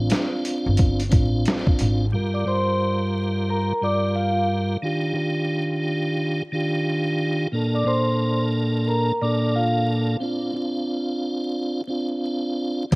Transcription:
0.00 1.03 C4 medium
0.00 1.03 D4 medium
0.00 1.04 F4 loud
0.10 snare loud
0.10 closed hi-hat medium
0.45 closed hi-hat medium
0.66 1.13 G1 medium
0.77 kick medium
0.77 closed hi-hat medium
1.00 closed hi-hat medium
1.09 1.44 A1 medium
1.09 2.06 C4 loud
1.09 2.06 D4 medium
1.09 2.07 F4 loud
1.09 kick medium
1.09 closed hi-hat medium
1.45 snare loud
1.45 closed hi-hat medium
1.67 kick loud
1.79 2.11 G#1 medium
1.79 closed hi-hat medium
2.12 2.44 G2 medium
2.12 2.45 G3 medium
2.12 2.45 F4 medium
2.12 2.46 A#4 loud
2.34 2.46 D5 medium
2.34 2.46 D6 medium
2.45 3.72 G2 loud
2.45 3.73 G3 medium
2.45 3.73 F4 medium
2.45 3.74 A#4 loud
2.45 2.98 C5 medium
2.45 2.99 C6 medium
3.49 3.79 A#4 medium
3.49 3.80 A#5 medium
3.81 4.76 G2 medium
3.81 4.77 G3 medium
3.81 4.77 F4 medium
3.81 4.78 A#4 loud
3.81 4.13 D5 medium
3.81 4.14 D6 medium
4.16 4.46 F4 medium
4.16 4.46 F5 medium
4.82 5.12 D#3 loud
4.82 5.13 D4 medium
4.82 5.14 F4 medium
4.82 5.15 G4 loud
5.14 6.42 D#3 loud
5.14 6.42 D4 medium
5.14 6.43 F4 medium
5.14 6.43 G4 loud
6.52 7.47 D#3 medium
6.52 7.47 D4 medium
6.52 7.48 F4 medium
6.52 7.48 G4 loud
7.52 7.83 A#2 loud
7.52 7.84 A#3 medium
7.52 7.85 D4 medium
7.52 7.85 A4 loud
7.74 7.86 D5 medium
7.74 7.86 D6 medium
7.84 9.12 A#2 loud
7.84 9.12 A#3 medium
7.84 9.13 D4 medium
7.84 9.13 A4 loud
7.84 8.38 C5 medium
7.84 8.38 C6 medium
8.88 9.18 A#4 medium
8.88 9.19 A#5 medium
9.22 10.16 A#2 loud
9.22 10.17 A#3 medium
9.22 10.17 D4 medium
9.22 10.18 A4 loud
9.22 9.52 D5 medium
9.22 9.52 D6 medium
9.56 9.86 F4 medium
9.56 9.86 F5 medium
10.20 10.52 C4 medium
10.20 10.54 D4 medium
10.20 10.55 F4 loud
10.53 11.81 C4 medium
10.53 11.82 D4 medium
10.53 11.83 F4 loud
11.88 12.84 C4 loud
11.88 12.85 D4 medium
11.88 12.85 F4 loud
12.91 12.95 G2 medium
12.91 12.95 G3 medium
12.91 kick loud
12.91 closed hi-hat medium

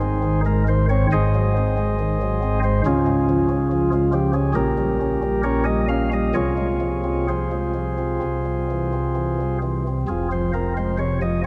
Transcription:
0.00 1.06 G#1 medium
0.00 1.06 G#2 medium
0.00 0.20 C4 medium
0.00 0.41 D#4 medium
0.00 0.41 G#4 medium
0.00 0.41 C5 loud
0.23 0.42 D#3 medium
0.45 0.64 G#3 medium
0.45 0.64 A#4 loud
0.68 0.87 D#3 medium
0.68 0.86 C5 loud
0.89 1.07 C4 medium
0.89 1.07 C#5 loud
1.12 2.82 G#1 medium
1.12 2.82 G#2 medium
1.12 2.60 G#4 medium
1.12 2.60 C5 medium
1.12 2.60 D#5 loud
1.35 1.53 F#3 medium
1.57 1.75 C4 medium
1.77 1.96 G#3 medium
2.00 2.18 D#3 medium
2.22 2.40 F#3 medium
2.43 2.61 C4 medium
2.63 2.81 G#3 medium
2.63 2.82 C5 loud
2.85 4.53 C#2 medium
2.85 4.53 C#3 medium
2.85 3.47 C#4 loud
2.85 3.90 F4 loud
2.85 3.90 G#4 loud
3.06 3.26 G#3 medium
3.29 3.48 F3 medium
3.49 3.68 C#4 medium
3.72 3.90 F3 medium
3.93 4.11 G#3 medium
3.93 4.11 F4 medium
4.13 4.32 F3 medium
4.13 4.31 G4 loud
4.33 4.52 C#4 medium
4.33 4.52 G#4 loud
4.55 6.33 A#1 medium
4.55 6.33 A#2 medium
4.55 4.99 C#4 medium
4.55 5.42 G4 medium
4.55 5.41 A#4 loud
4.78 4.98 G3 medium
5.01 5.20 C#4 medium
5.23 5.43 G3 medium
5.43 5.64 C#4 medium
5.43 5.63 G4 medium
5.43 5.63 A#4 medium
5.43 5.64 C#5 loud
5.65 5.86 G3 medium
5.65 5.86 D#5 loud
5.89 6.10 C#4 medium
5.89 6.09 F5 loud
6.12 6.33 G3 medium
6.12 6.33 D#5 loud
6.34 8.20 C2 medium
6.34 8.19 C3 medium
6.34 7.27 F4 medium
6.34 7.27 G#4 medium
6.34 7.27 C#5 loud
6.57 6.80 G#3 medium
6.81 7.03 F3 medium
7.04 7.27 C4 soft
7.29 7.51 F3 soft
7.29 9.58 F4 medium
7.29 9.58 G#4 medium
7.29 9.58 C5 medium
7.51 7.74 G#3 soft
7.74 7.97 F3 soft
7.98 8.19 C4 soft
8.22 10.04 C2 medium
8.22 10.05 C3 medium
8.46 8.67 G3 soft
8.71 8.92 E3 soft
8.93 9.14 C4 soft
9.16 9.37 E3 soft
9.41 9.61 G3 soft
9.63 9.84 E3 soft
9.87 10.07 C4 soft
10.08 11.47 F1 medium
10.08 11.47 F2 medium
10.08 10.29 C4 medium
10.08 10.29 F4 medium
10.08 10.28 G#4 medium
10.32 10.53 F3 medium
10.32 10.52 C5 medium
10.54 10.75 C4 medium
10.54 10.74 A#4 loud
10.77 10.98 G#3 medium
10.77 10.97 C5 medium
10.98 11.19 C3 medium
10.98 11.19 C#5 loud
11.22 11.42 F3 medium
11.22 11.41 D#5 medium

